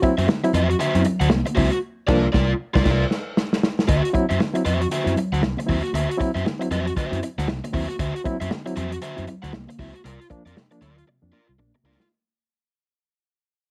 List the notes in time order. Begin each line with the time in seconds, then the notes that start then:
0.02 F#3 C4 E4, muted overdriven electric guitar stroke, kick, closed hi-hat, muted conga
0.18 F#2 F#4 C5 E5, closed hi-hat
0.28 D3, muted overdriven electric guitar stroke, snare, high conga
0.44 F#3 C4 E4, muted overdriven electric guitar stroke, closed hi-hat
0.53 F2 C4 E4 F#4 C5 E5, closed hi-hat, low conga
0.69 muted overdriven electric guitar stroke, closed hi-hat
0.79 D3 F#4 C5 E5, closed hi-hat
0.95 F#2 F#3 C4 E4, closed hi-hat
1.04 C4 E4, muted overdriven electric guitar stroke, closed hi-hat, low conga
1.20 D2 F#4 C5 F#5, closed hi-hat
1.30 C2 C4 E4, muted overdriven electric guitar stroke, snare, high conga
1.45 D3, muted overdriven electric guitar stroke, closed hi-hat, high conga
1.55 C#2 F#3 C4 E4 F#4 C5 E5, kick, open hi-hat
1.71 muted overdriven electric guitar stroke, closed hi-hat
2.07 C2 F3 A#3 D4 F4 A#4 D5, kick, snare, crash
2.32 C2 F4 A#4 D5, kick, snare
2.74 C2 F4 A#4 D5, kick, snare
2.84 C2 F4 A#4 D5, kick, snare, crash
3.11 snare
3.37 snare
3.53 snare
3.63 snare
3.79 snare
3.88 D2 D3 F#4 C5 E5, kick, closed hi-hat, muted conga
4.03 muted overdriven electric guitar stroke, closed hi-hat
4.13 F#3 C4 E4, muted overdriven electric guitar stroke, kick, closed hi-hat, muted conga
4.29 F#2 F#4 C5 E5, closed hi-hat
4.39 D3, muted overdriven electric guitar stroke, snare, high conga
4.53 F#3 C4 E4, muted overdriven electric guitar stroke, closed hi-hat
4.64 F2 C4 E4 F#4 C5 E5, closed hi-hat, low conga
4.81 muted overdriven electric guitar stroke, closed hi-hat
4.89 D3 F#4 C5, closed hi-hat, muted conga
4.93 E5
5.04 F#2 F#3 C4 E4, closed hi-hat
5.15 C4 E4, muted overdriven electric guitar stroke, closed hi-hat, low conga
5.32 D2 F#4 C5 F#5, closed hi-hat
5.41 C2 C4 E4, muted overdriven electric guitar stroke, snare, high conga
5.57 D3, muted overdriven electric guitar stroke, closed hi-hat, high conga
5.66 D#2 F#3 C4 E4 F#4 C5 E5, kick
5.70 open hi-hat
5.83 muted overdriven electric guitar stroke, closed hi-hat, high conga
5.93 D2 D3 F#4 C5 E5, closed hi-hat, muted conga
6.10 muted overdriven electric guitar stroke, closed hi-hat
6.17 F#3 C4 E4, muted overdriven electric guitar stroke, kick, closed hi-hat, muted conga
6.35 F#2 F#4 C5 E5, closed hi-hat
6.44 D3, muted overdriven electric guitar stroke, snare, high conga
6.59 F#3 C4 E4, muted overdriven electric guitar stroke, closed hi-hat
6.71 F2 F#4 C5 E5, closed hi-hat, low conga
6.87 muted overdriven electric guitar stroke, closed hi-hat
6.96 D3 F#4 C5 E5, kick, closed hi-hat
7.11 F#2 F#3 C4 E4, closed hi-hat
7.22 C4 E4, muted overdriven electric guitar stroke, closed hi-hat
7.38 D2 F#4 C5 F#5, snare, closed hi-hat
7.48 C2 C4 E4, muted overdriven electric guitar stroke, snare, high conga
7.64 D3, muted overdriven electric guitar stroke, closed hi-hat, high conga
7.73 D#2 F#3 C4 E4 F#4 C5 E5, kick, open hi-hat
7.89 muted overdriven electric guitar stroke, closed hi-hat, high conga
7.99 D2 D3 F#4 C5 E5, kick, closed hi-hat, muted conga
8.15 muted overdriven electric guitar stroke, closed hi-hat
8.24 F#3 C4 E4, muted overdriven electric guitar stroke, kick, closed hi-hat, muted conga
8.40 F#2 F#4 C5 E5, closed hi-hat
8.50 D3, muted overdriven electric guitar stroke, snare, high conga
8.65 F#3 C4 E4, muted overdriven electric guitar stroke, closed hi-hat
8.76 F2 C4 E4 F#4 C5 E5, closed hi-hat, low conga
8.92 muted overdriven electric guitar stroke, closed hi-hat
9.02 D3 F#4 C5 E5, closed hi-hat
9.16 F#2 F#3 C4 E4, closed hi-hat
9.27 C4 E4, muted overdriven electric guitar stroke, closed hi-hat, low conga
9.42 D2 F#4 C5 F#5, snare, closed hi-hat
9.53 C2 C4 E4, muted overdriven electric guitar stroke, snare, high conga
9.67 D3, muted overdriven electric guitar stroke, closed hi-hat, high conga
9.79 C#2 F#3 C4 E4 F#4 C5 E5, kick, open hi-hat
9.93 muted overdriven electric guitar stroke, closed hi-hat, high conga
10.04 C2 C3 F4 A#4 D5, closed hi-hat, muted conga
10.20 muted overdriven electric guitar stroke, closed hi-hat
10.30 F3 A#3 D4, muted overdriven electric guitar stroke, kick, closed hi-hat, muted conga
10.46 F2 F4 A#4 D5, closed hi-hat
10.56 C3, muted overdriven electric guitar stroke, snare, high conga
10.71 F3 A#3 D4, muted overdriven electric guitar stroke, closed hi-hat
10.81 D2 F4 A#4 D5, closed hi-hat, low conga
10.98 muted overdriven electric guitar stroke, closed hi-hat
11.07 C3, muted overdriven electric guitar stroke, muted conga
11.22 F2 F3 A#3 D4
11.32 A#3 D4 F4 A#4 D5
11.48 C2, muted overdriven electric guitar stroke
11.58 A#1 A#3 D4, muted overdriven electric guitar stroke, high conga
11.74 C3, muted overdriven electric guitar stroke, high conga
11.84 C#2 A#3 D4 F4 A#4 D5
12.00 muted overdriven electric guitar stroke, snare, high conga